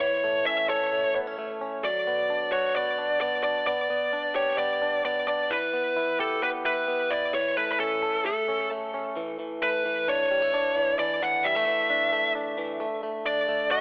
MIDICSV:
0, 0, Header, 1, 3, 480
1, 0, Start_track
1, 0, Tempo, 456621
1, 13, Time_signature, 4, 2, 24, 8
1, 14514, End_track
2, 0, Start_track
2, 0, Title_t, "Lead electric guitar"
2, 0, Program_c, 0, 29
2, 0, Note_on_c, 0, 73, 93
2, 483, Note_off_c, 0, 73, 0
2, 487, Note_on_c, 0, 76, 106
2, 726, Note_off_c, 0, 76, 0
2, 730, Note_on_c, 0, 73, 99
2, 1180, Note_off_c, 0, 73, 0
2, 1938, Note_on_c, 0, 74, 94
2, 2645, Note_off_c, 0, 74, 0
2, 2649, Note_on_c, 0, 73, 103
2, 2896, Note_off_c, 0, 73, 0
2, 2900, Note_on_c, 0, 74, 91
2, 3348, Note_off_c, 0, 74, 0
2, 3371, Note_on_c, 0, 74, 99
2, 3597, Note_off_c, 0, 74, 0
2, 3609, Note_on_c, 0, 74, 93
2, 3839, Note_off_c, 0, 74, 0
2, 3856, Note_on_c, 0, 74, 84
2, 4573, Note_off_c, 0, 74, 0
2, 4577, Note_on_c, 0, 73, 102
2, 4804, Note_off_c, 0, 73, 0
2, 4816, Note_on_c, 0, 74, 93
2, 5268, Note_off_c, 0, 74, 0
2, 5308, Note_on_c, 0, 74, 93
2, 5534, Note_off_c, 0, 74, 0
2, 5546, Note_on_c, 0, 74, 92
2, 5787, Note_on_c, 0, 71, 88
2, 5794, Note_off_c, 0, 74, 0
2, 6515, Note_off_c, 0, 71, 0
2, 6519, Note_on_c, 0, 69, 84
2, 6737, Note_off_c, 0, 69, 0
2, 6762, Note_on_c, 0, 71, 81
2, 6825, Note_off_c, 0, 71, 0
2, 6997, Note_on_c, 0, 71, 88
2, 7469, Note_on_c, 0, 74, 94
2, 7488, Note_off_c, 0, 71, 0
2, 7714, Note_off_c, 0, 74, 0
2, 7718, Note_on_c, 0, 73, 91
2, 7938, Note_off_c, 0, 73, 0
2, 7957, Note_on_c, 0, 71, 77
2, 8100, Note_off_c, 0, 71, 0
2, 8113, Note_on_c, 0, 71, 52
2, 8188, Note_off_c, 0, 71, 0
2, 8198, Note_on_c, 0, 69, 75
2, 8641, Note_off_c, 0, 69, 0
2, 8681, Note_on_c, 0, 69, 68
2, 9122, Note_off_c, 0, 69, 0
2, 10117, Note_on_c, 0, 71, 94
2, 10600, Note_on_c, 0, 73, 84
2, 10607, Note_off_c, 0, 71, 0
2, 11549, Note_off_c, 0, 73, 0
2, 11553, Note_on_c, 0, 74, 99
2, 11796, Note_off_c, 0, 74, 0
2, 11800, Note_on_c, 0, 78, 106
2, 12028, Note_on_c, 0, 76, 97
2, 12039, Note_off_c, 0, 78, 0
2, 12942, Note_off_c, 0, 76, 0
2, 13941, Note_on_c, 0, 74, 89
2, 14410, Note_off_c, 0, 74, 0
2, 14414, Note_on_c, 0, 76, 93
2, 14514, Note_off_c, 0, 76, 0
2, 14514, End_track
3, 0, Start_track
3, 0, Title_t, "Clean electric guitar"
3, 0, Program_c, 1, 27
3, 11, Note_on_c, 1, 52, 81
3, 251, Note_on_c, 1, 57, 62
3, 492, Note_on_c, 1, 61, 58
3, 727, Note_on_c, 1, 69, 66
3, 958, Note_off_c, 1, 57, 0
3, 971, Note_on_c, 1, 57, 56
3, 1208, Note_off_c, 1, 61, 0
3, 1212, Note_on_c, 1, 59, 56
3, 1336, Note_off_c, 1, 59, 0
3, 1336, Note_on_c, 1, 61, 47
3, 1442, Note_off_c, 1, 57, 0
3, 1454, Note_on_c, 1, 57, 64
3, 1683, Note_off_c, 1, 61, 0
3, 1695, Note_on_c, 1, 61, 62
3, 1932, Note_off_c, 1, 52, 0
3, 1936, Note_on_c, 1, 54, 70
3, 1983, Note_off_c, 1, 69, 0
3, 1985, Note_off_c, 1, 57, 0
3, 1986, Note_off_c, 1, 61, 0
3, 2179, Note_on_c, 1, 59, 55
3, 2417, Note_on_c, 1, 62, 57
3, 2659, Note_on_c, 1, 66, 67
3, 2897, Note_off_c, 1, 59, 0
3, 2901, Note_on_c, 1, 59, 60
3, 3133, Note_off_c, 1, 62, 0
3, 3137, Note_on_c, 1, 62, 58
3, 3375, Note_off_c, 1, 59, 0
3, 3379, Note_on_c, 1, 59, 68
3, 3611, Note_off_c, 1, 62, 0
3, 3615, Note_on_c, 1, 62, 60
3, 3855, Note_off_c, 1, 59, 0
3, 3859, Note_on_c, 1, 59, 68
3, 3862, Note_off_c, 1, 54, 0
3, 3908, Note_off_c, 1, 62, 0
3, 3911, Note_off_c, 1, 66, 0
3, 4096, Note_off_c, 1, 59, 0
3, 4100, Note_on_c, 1, 59, 59
3, 4340, Note_on_c, 1, 62, 60
3, 4580, Note_on_c, 1, 67, 56
3, 4816, Note_off_c, 1, 59, 0
3, 4821, Note_on_c, 1, 59, 60
3, 5053, Note_off_c, 1, 62, 0
3, 5066, Note_on_c, 1, 62, 58
3, 5302, Note_off_c, 1, 59, 0
3, 5306, Note_on_c, 1, 59, 66
3, 5534, Note_off_c, 1, 62, 0
3, 5547, Note_on_c, 1, 62, 64
3, 5785, Note_on_c, 1, 52, 82
3, 5833, Note_off_c, 1, 67, 0
3, 5835, Note_off_c, 1, 59, 0
3, 5835, Note_off_c, 1, 62, 0
3, 6027, Note_on_c, 1, 59, 59
3, 6269, Note_on_c, 1, 64, 62
3, 6510, Note_on_c, 1, 67, 64
3, 6738, Note_off_c, 1, 59, 0
3, 6750, Note_on_c, 1, 59, 62
3, 6980, Note_off_c, 1, 64, 0
3, 6993, Note_on_c, 1, 64, 59
3, 7218, Note_off_c, 1, 59, 0
3, 7231, Note_on_c, 1, 59, 57
3, 7461, Note_off_c, 1, 64, 0
3, 7474, Note_on_c, 1, 64, 64
3, 7701, Note_off_c, 1, 52, 0
3, 7714, Note_on_c, 1, 52, 77
3, 7758, Note_off_c, 1, 67, 0
3, 7759, Note_off_c, 1, 59, 0
3, 7760, Note_off_c, 1, 64, 0
3, 7958, Note_on_c, 1, 57, 60
3, 8198, Note_on_c, 1, 61, 59
3, 8436, Note_on_c, 1, 69, 61
3, 8671, Note_off_c, 1, 57, 0
3, 8676, Note_on_c, 1, 57, 69
3, 8720, Note_off_c, 1, 52, 0
3, 8722, Note_off_c, 1, 61, 0
3, 8917, Note_on_c, 1, 61, 57
3, 9153, Note_off_c, 1, 57, 0
3, 9158, Note_on_c, 1, 57, 62
3, 9385, Note_off_c, 1, 61, 0
3, 9398, Note_on_c, 1, 61, 66
3, 9634, Note_on_c, 1, 52, 83
3, 9682, Note_off_c, 1, 61, 0
3, 9860, Note_off_c, 1, 52, 0
3, 9872, Note_on_c, 1, 52, 64
3, 10109, Note_off_c, 1, 57, 0
3, 10113, Note_on_c, 1, 57, 58
3, 10345, Note_off_c, 1, 52, 0
3, 10358, Note_on_c, 1, 52, 57
3, 10596, Note_on_c, 1, 62, 64
3, 10831, Note_off_c, 1, 57, 0
3, 10835, Note_on_c, 1, 55, 59
3, 10867, Note_off_c, 1, 69, 0
3, 10954, Note_off_c, 1, 55, 0
3, 10954, Note_on_c, 1, 57, 53
3, 11072, Note_off_c, 1, 62, 0
3, 11077, Note_on_c, 1, 62, 81
3, 11299, Note_off_c, 1, 52, 0
3, 11311, Note_on_c, 1, 52, 76
3, 11541, Note_off_c, 1, 52, 0
3, 11554, Note_on_c, 1, 52, 85
3, 11783, Note_off_c, 1, 52, 0
3, 11796, Note_on_c, 1, 52, 62
3, 12028, Note_off_c, 1, 57, 0
3, 12034, Note_on_c, 1, 55, 64
3, 12155, Note_off_c, 1, 55, 0
3, 12155, Note_on_c, 1, 57, 53
3, 12258, Note_off_c, 1, 52, 0
3, 12270, Note_on_c, 1, 52, 60
3, 12504, Note_off_c, 1, 62, 0
3, 12508, Note_on_c, 1, 62, 66
3, 12733, Note_off_c, 1, 57, 0
3, 12746, Note_on_c, 1, 57, 62
3, 12980, Note_off_c, 1, 62, 0
3, 12984, Note_on_c, 1, 62, 71
3, 13210, Note_off_c, 1, 52, 0
3, 13223, Note_on_c, 1, 52, 78
3, 13452, Note_off_c, 1, 57, 0
3, 13457, Note_on_c, 1, 57, 85
3, 13509, Note_off_c, 1, 52, 0
3, 13693, Note_off_c, 1, 57, 0
3, 13697, Note_on_c, 1, 57, 62
3, 13932, Note_off_c, 1, 62, 0
3, 13936, Note_on_c, 1, 62, 66
3, 14170, Note_off_c, 1, 57, 0
3, 14174, Note_on_c, 1, 57, 63
3, 14414, Note_on_c, 1, 66, 59
3, 14514, Note_off_c, 1, 57, 0
3, 14514, Note_off_c, 1, 62, 0
3, 14514, Note_off_c, 1, 66, 0
3, 14514, End_track
0, 0, End_of_file